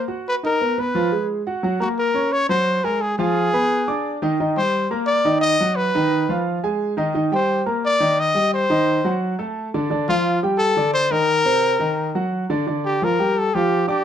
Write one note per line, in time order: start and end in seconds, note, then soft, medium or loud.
0.08 0.36 F#4 medium
0.08 0.36 F#5 medium
0.28 0.35 B4 medium
0.43 0.57 D#4 medium
0.43 0.81 A#4 medium
0.43 0.57 D#5 medium
0.61 0.75 B3 medium
0.61 0.75 B4 medium
0.78 0.92 B3 medium
0.78 0.92 B4 medium
0.78 1.30 B4 medium
0.95 1.09 F3 medium
0.95 1.09 F4 medium
1.12 1.40 G#3 medium
1.12 1.40 G#4 medium
1.47 1.61 F#4 medium
1.47 1.61 F#5 medium
1.63 1.77 F#3 medium
1.63 1.78 F#4 medium
1.63 1.78 F#5 medium
1.80 2.09 A#3 medium
1.80 1.89 F#4 medium
1.80 2.09 A#4 medium
1.80 2.09 A#5 medium
1.99 2.34 A#4 medium
2.14 2.43 C#4 medium
2.14 2.43 C#5 medium
2.14 2.43 C#6 medium
2.32 2.49 C#5 loud
2.49 2.78 F#3 medium
2.49 2.78 F#4 medium
2.49 2.86 C5 loud
2.49 2.78 F#5 medium
2.84 3.12 G#3 medium
2.84 3.13 G#4 medium
2.84 3.03 A#4 medium
2.84 3.13 G#5 medium
3.01 3.18 G#4 medium
3.18 3.47 F3 medium
3.18 3.47 F4 medium
3.18 4.18 G#4 medium
3.18 3.47 F5 medium
3.53 3.82 B3 medium
3.53 3.82 B4 medium
3.53 3.82 B5 medium
3.88 4.16 D4 medium
3.88 4.17 D5 medium
3.88 4.16 D6 medium
4.22 4.36 D#3 medium
4.22 4.36 D#4 medium
4.22 4.37 D#5 medium
4.40 4.54 D#3 medium
4.40 4.54 D#4 medium
4.40 4.54 D#5 medium
4.57 4.85 G3 medium
4.57 4.85 G4 medium
4.57 4.89 C5 medium
4.57 4.85 G5 medium
4.91 5.19 A#3 medium
4.91 5.19 A#4 medium
4.91 5.20 A#5 medium
5.07 5.40 D5 loud
5.25 5.53 D#3 medium
5.25 5.53 D#4 medium
5.25 5.54 D#5 medium
5.41 5.77 D#5 loud
5.60 5.89 F#3 medium
5.60 5.89 F#4 medium
5.60 5.89 F#5 medium
5.76 6.46 B4 medium
5.95 6.23 D#3 medium
5.95 6.23 D#4 medium
5.95 6.24 D#5 medium
6.29 6.57 F3 medium
6.29 6.57 F4 medium
6.29 6.58 F5 medium
6.63 6.92 G#3 medium
6.63 6.92 G#4 medium
6.63 6.92 G#5 medium
6.97 7.12 D#3 medium
6.97 7.12 D#4 medium
6.97 7.12 D#5 medium
7.14 7.29 D#3 medium
7.14 7.29 D#4 medium
7.14 7.29 D#5 medium
7.32 7.60 G3 medium
7.32 7.60 G4 medium
7.32 7.65 C5 medium
7.32 7.61 G5 medium
7.66 7.95 A#3 medium
7.66 7.95 A#4 medium
7.66 7.95 A#5 medium
7.85 8.21 D5 loud
8.00 8.29 D#3 medium
8.00 8.29 D#4 medium
8.00 8.30 D#5 medium
8.20 8.53 D#5 loud
8.35 8.64 G3 medium
8.35 8.64 G4 medium
8.35 8.64 G5 medium
8.54 9.18 C5 loud
8.70 8.98 D#3 medium
8.70 8.98 D#4 medium
8.70 8.99 D#5 medium
9.04 9.33 F#3 medium
9.04 9.33 F#4 medium
9.04 9.33 F#5 medium
9.39 9.67 A3 medium
9.39 9.67 A4 medium
9.39 9.68 A5 medium
9.74 9.88 D3 medium
9.74 9.88 D4 medium
9.74 9.88 D5 medium
9.90 10.05 D3 medium
9.90 10.05 D4 medium
9.90 10.05 D5 medium
10.09 10.37 F3 medium
10.09 10.41 F4 medium
10.09 10.37 F4 medium
10.09 10.37 F5 medium
10.43 10.71 G3 medium
10.43 10.71 G4 medium
10.43 10.72 G5 medium
10.58 10.91 A4 loud
10.77 11.05 D3 medium
10.77 11.05 D4 medium
10.77 11.06 D5 medium
10.94 11.13 C5 loud
11.11 11.39 D#3 medium
11.11 11.40 D#4 medium
11.11 12.32 A#4 loud
11.11 11.40 D#5 medium
11.45 11.74 C3 medium
11.45 11.74 C4 medium
11.45 11.74 C5 medium
11.79 12.08 D#3 medium
11.79 12.08 D#4 medium
11.79 12.08 D#5 medium
12.15 12.43 F#3 medium
12.15 12.43 F#4 medium
12.15 12.44 F#5 medium
12.50 12.64 D3 medium
12.50 12.64 D4 medium
12.50 12.64 D5 medium
12.67 12.95 D3 medium
12.67 12.95 D4 medium
12.67 12.95 D5 medium
12.85 13.05 G4 medium
13.02 13.16 F3 medium
13.02 13.16 F4 medium
13.02 13.40 A#4 medium
13.02 13.16 F5 medium
13.19 13.47 G3 medium
13.19 13.48 G4 medium
13.19 13.47 G5 medium
13.38 13.56 A4 medium
13.54 13.82 F3 medium
13.54 13.83 F4 medium
13.54 13.88 G4 medium
13.54 13.83 F5 medium
13.88 14.04 D4 medium
13.88 14.04 G4 medium
13.88 14.04 D5 medium
13.88 14.04 D6 medium